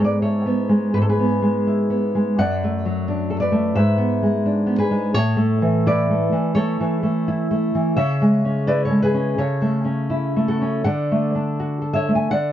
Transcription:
Already playing: G#2 B3
0.00 G#3
0.04 B4 D5
0.22 E4 A4 C#5
0.46 B3
0.69 G#3
0.94 G#2 B4
1.02 A4
1.09 G#4 B4
1.19 B3
1.42 G#3
1.67 E4
1.90 B3
2.15 G#3
2.38 F#2 D5 F#5
2.64 A3
2.85 F#3
3.08 D4
3.30 A4
3.40 B4 D5
3.52 A3
3.76 G#2 B4 E5
3.98 B3
4.23 G#3
4.46 D4
4.66 B3
4.78 G#4 B4
4.91 G#3
5.14 A2 A4 C#5
5.37 A3
5.62 E3
5.86 E4 B4 D5
6.11 A3
6.32 E3
6.55 A3 A4 C#5
6.80 E3
7.03 A3
7.28 E4
7.51 A3
7.75 E3
7.96 C#3 C#5 E5
8.21 G#3
8.45 C#4
8.67 E4 B4 D5
8.85 A4 C#5
8.90 G#3
9.03 G#4 B4
9.14 C#4
9.38 C#3 A4 C#5
9.62 A3
9.84 C#4
10.10 E4
10.36 A3
10.48 F#4 A4
10.61 C#4
10.84 D3 D5 F#5
11.12 A3
11.35 D4
11.60 F#4
11.81 A4
11.93 C#5 E5
12.08 A3
12.15 E5 G#5
12.30 D3 D5 F#5

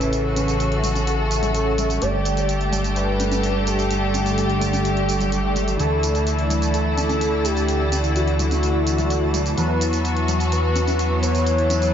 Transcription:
Already playing: A1 C#3 E3 A3 C#4 E4 A4 B4 E5 A5, sub drop
0.01 closed hi-hat, tambourine
0.13 F#4, closed hi-hat, tambourine
0.36 closed hi-hat, tambourine, high conga
0.48 closed hi-hat, tambourine
0.60 A4, closed hi-hat, tambourine
0.72 closed hi-hat
0.84 closed hi-hat, tambourine, low conga
0.95 closed hi-hat, tambourine, high conga
1.07 closed hi-hat, tambourine
1.31 closed hi-hat, tambourine
1.43 closed hi-hat, tambourine, low conga
1.55 closed hi-hat, tambourine
1.78 closed hi-hat, tambourine, low conga
1.90 closed hi-hat, tambourine
2.02 G1 D3 G3 A3 G4 D5, closed hi-hat, tambourine
2.25 closed hi-hat, tambourine
2.37 closed hi-hat, tambourine
2.49 closed hi-hat, tambourine
2.61 closed hi-hat
2.72 closed hi-hat, tambourine, low conga
2.84 closed hi-hat, tambourine
2.96 B4, closed hi-hat, tambourine
3.20 closed hi-hat, tambourine, high conga
3.32 closed hi-hat, tambourine, high conga
3.43 closed hi-hat, tambourine
3.67 A4, closed hi-hat, tambourine
3.79 closed hi-hat, tambourine
3.91 closed hi-hat, tambourine
4.14 closed hi-hat, tambourine, high conga
4.26 closed hi-hat, tambourine
4.38 G4, closed hi-hat, tambourine
4.50 closed hi-hat
4.61 closed hi-hat, tambourine, low conga
4.73 closed hi-hat, tambourine, high conga
4.85 closed hi-hat, tambourine
4.97 closed hi-hat
5.09 closed hi-hat, tambourine
5.20 closed hi-hat, tambourine, low conga
5.32 closed hi-hat, tambourine
5.56 closed hi-hat, tambourine, low conga
5.68 closed hi-hat, tambourine
5.79 D2 D3 E3 A3 E4 A4 D5, closed hi-hat, tambourine
6.03 closed hi-hat, tambourine
6.15 closed hi-hat, tambourine
6.27 closed hi-hat, tambourine
6.39 closed hi-hat
6.50 closed hi-hat, tambourine, low conga
6.62 closed hi-hat, tambourine
6.74 A4, closed hi-hat, tambourine
6.98 closed hi-hat, tambourine, high conga
7.09 closed hi-hat, tambourine, high conga
7.21 closed hi-hat, tambourine
7.45 G4, closed hi-hat, tambourine
7.57 closed hi-hat, tambourine
7.68 closed hi-hat, tambourine
7.92 closed hi-hat, tambourine, high conga
8.04 closed hi-hat, tambourine
8.16 F#4, closed hi-hat, tambourine
8.28 closed hi-hat
8.39 closed hi-hat, tambourine, low conga
8.51 closed hi-hat, tambourine, high conga
8.63 closed hi-hat, tambourine
8.87 closed hi-hat, tambourine
8.98 closed hi-hat, tambourine, low conga
9.10 closed hi-hat, tambourine
9.34 closed hi-hat, tambourine, low conga
9.46 closed hi-hat, tambourine
9.57 E2 F#3 B3 E4 F#4 B4, closed hi-hat, tambourine
9.81 closed hi-hat, tambourine
9.93 closed hi-hat, tambourine
10.05 closed hi-hat, tambourine
10.17 closed hi-hat
10.28 closed hi-hat, tambourine, low conga
10.40 closed hi-hat, tambourine
10.52 B4, closed hi-hat, tambourine
10.76 closed hi-hat, tambourine, high conga
10.87 closed hi-hat, tambourine, high conga
10.99 closed hi-hat, tambourine
11.23 C#5, closed hi-hat, tambourine
11.35 closed hi-hat, tambourine
11.46 E4, closed hi-hat, tambourine
11.58 closed hi-hat
11.70 closed hi-hat, tambourine, high conga
11.82 closed hi-hat, tambourine

